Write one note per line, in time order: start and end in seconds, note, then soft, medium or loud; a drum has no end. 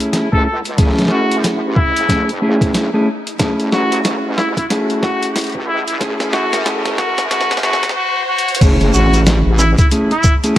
0.00 0.28 A3 medium
0.00 0.28 C#4 medium
0.00 0.28 E4 medium
0.00 0.28 G#4 medium
0.00 closed hi-hat medium
0.00 riser medium
0.13 snare medium
0.13 closed hi-hat medium
0.32 0.77 C#2 medium
0.32 0.46 A3 medium
0.32 0.46 C#4 medium
0.32 0.46 E4 medium
0.32 0.46 G#4 medium
0.32 0.41 A4 medium
0.32 kick medium
0.46 0.58 A4 medium
0.65 closed hi-hat medium
0.77 0.95 C2 medium
0.77 2.06 A3 medium
0.77 2.06 C#4 medium
0.77 2.06 E4 medium
0.77 2.06 G#4 medium
0.77 kick loud
0.77 snare soft
0.77 closed hi-hat medium
0.83 snare soft
0.89 snare soft
0.93 snare soft
0.98 1.28 F#2 loud
0.98 snare soft
0.98 closed hi-hat soft
1.02 snare soft
1.05 snare soft
1.08 1.37 F#4 medium
1.08 snare medium
1.30 1.60 F#2 loud
1.30 closed hi-hat medium
1.44 snare medium
1.44 closed hi-hat medium
1.63 1.93 A1 medium
1.76 2.29 E4 medium
1.76 kick loud
1.96 2.91 F#1 loud
1.96 closed hi-hat medium
2.09 2.29 A3 medium
2.09 2.29 C#4 medium
2.09 2.29 E4 medium
2.09 2.29 G#4 medium
2.09 kick medium
2.09 snare medium
2.09 closed hi-hat medium
2.29 closed hi-hat soft
2.42 2.89 A3 medium
2.42 2.89 C#4 medium
2.42 2.89 E4 medium
2.42 2.89 G#4 medium
2.61 kick loud
2.61 closed hi-hat medium
2.74 snare medium
2.74 closed hi-hat medium
2.94 3.07 A3 medium
2.94 3.07 C#4 medium
2.94 3.07 E4 medium
2.94 3.07 G#4 medium
3.27 closed hi-hat medium
3.39 3.56 F#1 medium
3.39 4.67 A3 medium
3.39 4.67 C#4 medium
3.39 4.67 E4 medium
3.39 4.67 G#4 medium
3.39 kick loud
3.39 snare medium
3.39 closed hi-hat medium
3.59 3.70 F#1 medium
3.59 closed hi-hat soft
3.72 4.21 A1 medium
3.72 3.98 F#4 medium
3.72 snare medium
3.92 closed hi-hat medium
4.05 snare medium
4.05 closed hi-hat medium
4.24 4.54 A1 loud
4.37 4.50 E4 medium
4.37 snare medium
4.57 4.65 E4 medium
4.57 kick loud
4.57 closed hi-hat medium
4.70 5.98 A3 medium
4.70 5.98 C#4 medium
4.70 5.98 E4 medium
4.70 5.97 G#4 medium
4.70 snare medium
4.70 closed hi-hat medium
4.90 closed hi-hat soft
5.03 5.29 F#4 medium
5.03 kick loud
5.03 snare medium
5.23 closed hi-hat medium
5.36 snare medium
5.36 closed hi-hat medium
5.38 closed hi-hat medium
5.41 closed hi-hat soft
5.44 closed hi-hat soft
5.47 closed hi-hat soft
5.50 closed hi-hat soft
5.52 6.17 C#2 medium
5.52 kick medium
5.52 closed hi-hat soft
5.68 5.80 E4 medium
5.87 5.96 E4 medium
5.87 closed hi-hat medium
6.01 6.64 A3 medium
6.01 6.64 C#4 medium
6.01 6.64 E4 medium
6.01 6.64 G#4 medium
6.01 kick loud
6.01 snare medium
6.01 closed hi-hat medium
6.20 6.50 F#2 loud
6.20 snare medium
6.20 closed hi-hat soft
6.33 6.59 F#4 medium
6.33 snare loud
6.53 6.82 F#2 loud
6.53 snare medium
6.53 closed hi-hat medium
6.66 7.29 A3 medium
6.66 7.29 C#4 medium
6.66 7.29 E4 medium
6.66 7.29 G#4 medium
6.66 snare loud
6.66 closed hi-hat medium
6.85 7.15 A1 medium
6.85 snare medium
6.85 closed hi-hat soft
6.97 7.24 F#4 medium
6.97 kick loud
6.97 snare loud
7.18 7.80 F#2 loud
7.18 snare medium
7.18 closed hi-hat medium
7.30 7.61 A3 medium
7.30 7.61 C#4 medium
7.30 7.61 E4 medium
7.30 7.56 F#4 medium
7.30 7.61 G#4 medium
7.30 kick medium
7.30 snare loud
7.30 closed hi-hat medium
7.30 swell medium
7.41 snare medium
7.51 snare medium
7.51 closed hi-hat soft
7.53 closed hi-hat soft
7.57 snare medium
7.57 closed hi-hat soft
7.59 closed hi-hat soft
7.61 7.94 A3 medium
7.61 7.94 C#4 medium
7.61 7.94 E4 medium
7.61 7.89 F#4 medium
7.61 7.94 G#4 medium
7.61 snare loud
7.61 closed hi-hat soft
7.73 snare medium
7.83 kick loud
7.83 snare medium
7.83 closed hi-hat medium
7.89 snare medium
7.96 8.22 F#4 loud
8.29 8.55 F#4 loud
8.38 closed hi-hat medium
8.48 closed hi-hat medium
8.55 closed hi-hat medium
8.61 8.78 F#1 medium
8.61 9.89 A3 medium
8.61 9.89 C#4 medium
8.61 9.89 E4 medium
8.61 9.89 G#4 medium
8.61 kick loud
8.61 closed hi-hat medium
8.61 crash loud
8.61 impact medium
8.61 shekere soft
8.81 8.92 F#1 loud
8.81 closed hi-hat soft
8.94 9.43 A1 loud
8.94 9.20 F#4 medium
8.94 shekere medium
9.14 closed hi-hat medium
9.14 shekere soft
9.26 snare loud
9.26 snare soft
9.26 closed hi-hat medium
9.26 shekere soft
9.46 9.76 A1 medium
9.59 9.72 E4 medium
9.59 snare medium
9.59 shekere medium
9.78 9.87 E4 medium
9.78 kick loud
9.78 closed hi-hat medium
9.78 shekere medium
9.91 10.12 A3 medium
9.91 10.12 C#4 medium
9.91 10.12 E4 medium
9.91 10.12 G#4 medium
9.91 closed hi-hat medium
9.91 shekere soft
10.11 10.34 E4 medium
10.11 closed hi-hat soft
10.24 kick loud
10.24 shekere medium
10.44 10.57 A3 medium
10.44 10.57 C#4 medium
10.44 10.57 E4 medium
10.44 10.57 G#4 medium
10.44 closed hi-hat medium
10.44 shekere medium